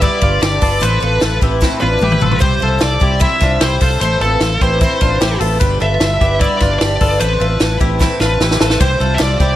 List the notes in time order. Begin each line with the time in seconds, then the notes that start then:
0.01 G3 B3 D4 E4 G4 B4 D5, kick, ride
0.21 G1 D4 F4 G4 B4, kick, ride
0.41 G1 G3 D4 G4 B4 D5, snare, ride
0.61 G1 D4 F4 G4 A4 B4, kick, open hi-hat, ride
0.80 A1 A2 E3 A3 C4 E4 A4 B4 C5, hi-hat pedal, ride
1.00 A1 A3 C4 E4 F4 A4 B4, ride
1.20 A1 A3 C4 E4 B4, snare, ride
1.41 A1 A3 C4 E4 G4 B4, kick, ride
1.61 A2 E3 A3 C4 E4 B4, kick, snare
1.79 A1 A3 C4 D4 E4 F4 B4, high tom
1.99 A1 A3 C4 E4 G4 B4, mid tom
2.03 E4
2.12 mid tom
2.20 A1 A3 C4 E4 F4 A4 B4, floor tom
2.32 floor tom
2.39 C2 C3 E3 G3 C4 E4 G4 C5, kick, ride
2.59 C2 G3 C4 E4 A4 C5, ride
2.64 F4
2.79 C2 G3 C4 E4 C5 D5, snare, ride
3.00 C2 G3 C4 E4 G4 C5, kick, ride
3.20 C3 E3 G3 C4 E4 C5 E5, kick, ride
3.40 C2 G3 C4 D4 E4 F4 C5, kick, snare, ride
3.61 C2 G3 C4 E4 G4 C5, snare, ride
3.81 C2 G3 C4 E4 F4 A4 C5, kick, open hi-hat, ride
4.01 A1 A2 E3 A3 C4 E4 A4 B4 C5, hi-hat pedal, ride
4.20 A1 E4 F4 A4 B4, ride
4.24 A3 C4
4.41 A1 A3 C4 E4, snare, ride
4.45 B4
4.61 A1 A3 C4 E4 G4 B4 C5, kick, ride
4.81 A2 E3 A3 C4 E4 B4, kick, ride
5.01 A1 A3 C4 D4 E4 F4 B4, kick, ride
5.21 A1 A3 C4 E4 G4 B4, snare, ride
5.40 A1 A3 C4 E4 F4 A4 B4, open hi-hat, ride
5.60 G1 G3 D4 G4 B4, kick, hi-hat pedal, ride
5.80 G1 D4 F4 G4 A4 B4 E5, ride
6.00 G1 G3 D4 G4 B4, snare, ride
6.21 G1 E4 G4 B4, kick, ride
6.25 D4
6.40 G3 B3 D4 E4 G4 B4 D5, kick, ride
6.60 G1 D4 F4 G4 B4, kick, snare, ride
6.65 D4
6.79 G1 G3 D4 G4 D5, snare, ride
6.84 G4 B4
7.01 G1 D4 F4 G4 A4 B4, kick, open hi-hat, ride
7.20 A1 A2 E3 A3 C4 E4 A4 B4 C5, hi-hat pedal, ride
7.40 A1 A3 C4 E4 F4 A4 B4, ride
7.60 A1 A3 C4 E4 B4, snare, ride
7.79 A1 A3 C4 E4 G4 B4, kick, ride
7.99 A2 E3 A3 C4 E4 B4, kick, snare
8.20 A1 A3 C4 D4 E4 F4 B4, snare
8.40 A1 A3 C4 E4 G4 B4, snare
8.51 snare
8.60 A1 A3 C4 E4 F4 A4 B4, snare
8.70 snare
8.80 C2 C3 E3 G3 C4 E4 G4 C5, kick, ride
9.00 C2 G3 C4 E4 F4 A4 C5, ride
9.14 E5
9.19 C2 G3 C4 D5, snare, clap, ride
9.23 E4 C5
9.40 C2 G3 C4 E4 G4 C5, kick, ride